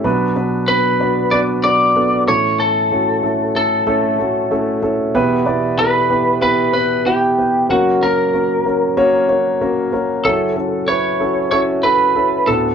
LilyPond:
<<
  \new Staff \with { instrumentName = "Lead electric guitar" } { \time 4/4 \key fis \phrygian \tempo 4 = 94 r4 b'4 d''8 d''4 cis''8 | a'4. a'2 r8 | r4 b'4 b'8 b'8 g'4 | fis'8 ais'2. r8 |
a'4 cis''4 cis''8 b'4 a'8 | }
  \new Staff \with { instrumentName = "Grand piano" } { \time 4/4 \key fis \phrygian <b d' fis' b'>8 <b d' fis' b'>8 <b d' fis' b'>8 <b d' fis' d''>8 <b d' fis' b'>8 <b d' fis' b'>8 <b d' fis' a'>8 <a cis' e' a'>8~ | <a cis' e' a'>8 <a cis' e' fis'>8 <a cis' e' a'>8 <a cis' e' a'>8 <a cis' e' a'>8 <a cis' e' fis'>8 <a cis' e' a'>8 <a cis' e' a'>8 | <b e' g' b'>8 <b e' g' d''>8 <b e' g' a'>8 <b e' g' b'>8 <b e' g' b'>8 <b e' g' b'>8 <b e' g' b'>8 <b e' g' b'>8 | <ais cis' fis' ais'>8 <ais cis' fis' ais'>8 <ais cis' fis' ais'>8 <ais cis' fis' ais'>8 <ais cis' fis' cis''>8 <ais cis' fis' cis''>8 <ais cis' fis' ais'>8 <ais cis' fis' ais'>8 |
<cis' e' fis' a'>8 <cis' e' fis' a'>8 <cis' e' fis' b'>8 <cis' e' fis' a'>8 <cis' e' fis' a'>8 <cis' e' fis' a'>8 <cis' e' fis' a'>8 <b d' fis' a'>8 | }
  \new Staff \with { instrumentName = "Grand piano" } { \clef bass \time 4/4 \key fis \phrygian <b, fis>2.~ <b, fis>8 <a, e>8~ | <a, e>2.~ <a, e>8 r8 | <e, b,>1 | <fis, cis>1 |
<fis, cis>2.~ <fis, cis>8 <d, a,>8 | }
>>